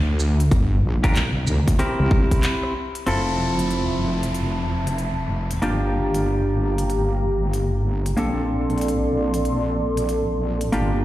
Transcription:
0.00 0.50 D2 loud
0.20 shaker medium
0.40 closed hi-hat medium
0.51 0.82 G1 loud
0.51 kick loud
0.51 closed hi-hat medium
0.83 1.13 A#1 medium
1.04 1.17 D4 medium
1.04 1.17 F4 medium
1.04 1.17 G4 medium
1.04 1.17 A#4 medium
1.04 kick loud
1.04 closed hi-hat medium
1.15 1.45 C2 loud
1.15 clap loud
1.15 closed hi-hat medium
1.47 1.77 D2 medium
1.47 shaker medium
1.68 kick medium
1.68 closed hi-hat medium
1.79 2.73 C4 medium
1.79 2.73 E4 medium
1.79 2.73 G4 medium
1.79 2.73 A#4 medium
1.79 closed hi-hat medium
1.99 2.43 C2 loud
2.11 kick loud
2.31 kick medium
2.31 closed hi-hat medium
2.43 clap loud
2.43 closed hi-hat medium
2.63 cross-stick soft
2.95 closed hi-hat medium
3.07 5.60 F1 medium
3.07 5.60 F3 medium
3.07 5.60 C4 medium
3.07 5.60 E4 medium
3.07 5.60 F4 medium
3.07 5.60 A4 medium
3.07 5.60 E5 medium
3.07 5.60 A5 medium
3.07 closed hi-hat medium
3.07 downlifter medium
3.59 closed hi-hat medium
3.70 closed hi-hat soft
4.23 closed hi-hat medium
4.35 closed hi-hat medium
4.87 closed hi-hat medium
4.98 closed hi-hat soft
5.51 closed hi-hat medium
5.62 8.15 G1 medium
5.62 8.15 A#3 medium
5.62 8.15 D4 medium
5.62 8.15 F4 medium
5.62 8.15 G4 medium
5.62 8.15 F5 medium
5.62 8.15 A#5 medium
5.62 closed hi-hat medium
6.14 closed hi-hat medium
6.78 closed hi-hat medium
6.90 closed hi-hat medium
7.53 closed hi-hat soft
8.06 closed hi-hat medium
8.17 10.70 A#1 medium
8.17 10.70 A#3 medium
8.17 10.70 C4 medium
8.17 10.70 D4 medium
8.17 10.70 A4 medium
8.17 10.70 D5 medium
8.17 10.70 C6 medium
8.17 closed hi-hat soft
8.70 closed hi-hat soft
8.78 closed hi-hat soft
8.81 closed hi-hat medium
8.88 closed hi-hat medium
9.34 closed hi-hat medium
9.45 closed hi-hat soft
9.97 closed hi-hat medium
10.09 closed hi-hat soft
10.61 closed hi-hat medium
10.72 11.05 G1 medium
10.72 11.05 A#3 medium
10.72 11.05 D4 medium
10.72 11.05 F4 medium
10.72 11.05 G4 medium
10.72 11.05 F5 medium
10.72 11.05 A#5 medium
10.72 closed hi-hat medium

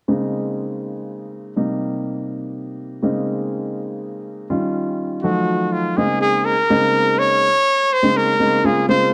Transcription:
0.08 1.53 C#3 medium
0.08 1.53 G#3 soft
0.08 1.53 A#3 soft
0.08 1.53 C4 soft
0.08 1.53 D#4 medium
1.56 3.00 C3 medium
1.56 3.00 G3 soft
1.56 3.01 A#3 soft
1.56 3.00 D#4 medium
3.03 4.47 C#3 medium
3.03 4.47 G#3 medium
3.03 4.47 A#3 medium
3.03 4.47 C4 soft
3.03 4.47 D#4 medium
4.50 5.22 D#3 medium
4.50 5.23 G3 medium
4.50 5.23 C#4 medium
4.50 5.23 F4 medium
5.22 5.96 D#3 medium
5.22 5.97 F3 medium
5.22 5.97 F#3 medium
5.22 5.97 A3 medium
5.22 5.74 F#4 medium
5.72 5.98 F4 medium
5.97 6.53 C#3 medium
5.97 6.53 G#3 medium
5.97 6.53 A#3 medium
5.97 6.53 C4 medium
5.97 6.53 D#4 medium
5.97 6.21 G#4 medium
6.21 6.47 G#4 medium
6.45 7.20 A#4 medium
6.70 7.45 C#3 medium
6.70 7.45 G#3 medium
6.70 7.45 A#3 medium
6.70 7.45 C4 medium
6.70 7.45 D#4 medium
7.18 7.94 C#5 loud
7.93 8.18 C5 medium
8.03 8.31 C#3 medium
8.03 8.31 G#3 medium
8.03 8.31 A#3 medium
8.03 8.31 C4 medium
8.03 8.31 D#4 medium
8.17 8.67 A#4 medium
8.40 8.59 C#3 medium
8.40 8.59 G#3 medium
8.40 8.59 A#3 medium
8.40 8.59 C4 medium
8.40 8.59 D#4 medium
8.64 8.83 C#3 medium
8.64 8.83 G#3 medium
8.64 8.83 A#3 medium
8.64 8.83 C4 medium
8.64 8.83 F4 medium
8.64 8.88 G#4 medium
8.88 9.14 C#3 medium
8.88 9.14 G#3 medium
8.88 9.14 A#3 medium
8.88 9.14 C4 medium
8.88 9.14 F4 medium
8.88 9.11 C5 medium

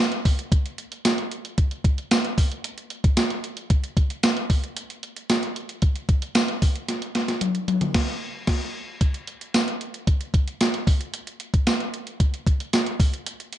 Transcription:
0.12 closed hi-hat medium
0.25 kick medium
0.25 open hi-hat medium
0.39 closed hi-hat medium
0.52 kick loud
0.52 closed hi-hat loud
0.66 closed hi-hat medium
0.78 closed hi-hat medium
0.92 closed hi-hat medium
1.05 snare loud
1.05 closed hi-hat loud
1.05 tambourine medium
1.18 closed hi-hat soft
1.31 closed hi-hat medium
1.45 closed hi-hat medium
1.58 kick medium
1.58 closed hi-hat medium
1.71 closed hi-hat medium
1.84 kick medium
1.84 closed hi-hat medium
1.98 closed hi-hat medium
2.11 snare loud
2.11 closed hi-hat medium
2.11 tambourine medium
2.25 closed hi-hat medium
2.38 kick medium
2.38 open hi-hat medium
2.52 closed hi-hat medium
2.64 closed hi-hat loud
2.78 closed hi-hat medium
2.90 closed hi-hat medium
3.04 kick loud
3.04 closed hi-hat medium
3.17 snare loud
3.17 closed hi-hat medium
3.17 tambourine medium
3.30 closed hi-hat medium
3.44 closed hi-hat medium
3.57 closed hi-hat medium
3.70 kick medium
3.70 closed hi-hat medium
3.84 closed hi-hat medium
3.97 kick medium
3.97 closed hi-hat medium
4.10 closed hi-hat medium
4.23 snare loud
4.23 closed hi-hat medium
4.23 tambourine medium
4.37 closed hi-hat medium
4.50 kick loud
4.50 open hi-hat medium
4.64 closed hi-hat medium
4.77 closed hi-hat loud
4.90 closed hi-hat medium
5.03 closed hi-hat medium
5.16 closed hi-hat medium
5.30 snare loud
5.30 closed hi-hat medium
5.30 tambourine medium
5.43 closed hi-hat soft
5.56 closed hi-hat medium
5.69 closed hi-hat medium
5.82 kick medium
5.82 closed hi-hat medium
5.96 closed hi-hat medium
6.09 kick medium
6.09 closed hi-hat medium
6.22 closed hi-hat medium
6.35 snare loud
6.35 closed hi-hat medium
6.35 tambourine medium
6.48 closed hi-hat medium
6.62 kick medium
6.62 open hi-hat medium
6.75 closed hi-hat medium
6.88 snare medium
6.88 closed hi-hat loud
7.02 closed hi-hat medium
7.15 snare medium
7.15 closed hi-hat medium
7.28 snare medium
7.28 closed hi-hat medium
7.41 closed hi-hat loud
7.41 high tom medium
7.55 closed hi-hat soft
7.68 closed hi-hat medium
7.68 high tom medium
7.81 closed hi-hat medium
7.81 mid tom medium
7.94 kick loud
7.94 snare loud
7.94 crash medium
8.47 kick loud
8.47 snare loud
8.47 crash medium
9.01 kick loud
9.01 closed hi-hat loud
9.14 closed hi-hat medium
9.27 closed hi-hat medium
9.41 closed hi-hat medium
9.54 snare loud
9.54 closed hi-hat loud
9.54 tambourine medium
9.68 closed hi-hat medium
9.81 closed hi-hat medium
9.94 closed hi-hat medium
10.07 kick medium
10.07 closed hi-hat medium
10.21 closed hi-hat medium
10.34 kick medium
10.34 closed hi-hat medium
10.48 closed hi-hat medium
10.61 snare loud
10.61 closed hi-hat medium
10.61 tambourine medium
10.74 closed hi-hat medium
10.87 kick loud
10.87 open hi-hat medium
11.01 closed hi-hat medium
11.14 closed hi-hat medium
11.27 closed hi-hat medium
11.40 closed hi-hat medium
11.54 kick loud
11.54 closed hi-hat medium
11.67 snare loud
11.67 closed hi-hat medium
11.67 tambourine medium
11.80 closed hi-hat soft
11.94 closed hi-hat medium
12.07 closed hi-hat medium
12.20 kick medium
12.20 closed hi-hat medium
12.34 closed hi-hat medium
12.47 kick medium
12.47 closed hi-hat medium
12.60 closed hi-hat medium
12.73 snare loud
12.73 closed hi-hat medium
12.73 tambourine medium
12.86 closed hi-hat medium
13.00 kick loud
13.00 open hi-hat medium
13.14 closed hi-hat medium
13.26 closed hi-hat loud
13.40 closed hi-hat medium
13.53 closed hi-hat medium

